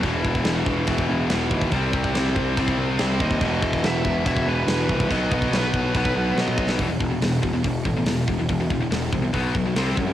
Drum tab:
CC |x---x---x---x---|x---x---x---x---|x---x---x---x---|x---x---x-------|
HH |----------------|----------------|----------------|----------------|
SD |----o-------o---|----o-------o---|----o-------o---|----o-------o--o|
T2 |----------------|----------------|----------------|-------------o--|
BD |o-oo--o-oo----oo|o-oo--o-oo----oo|o-oo--o-oo----oo|o-oo--o-oo----o-|

CC |----------------|----------------|
HH |o---o---o---o---|o---o---o---o---|
SD |----o-------o---|----o-------o---|
T2 |----------------|----------------|
BD |o-o---o-o-o---o-|o-o---o-o-o---o-|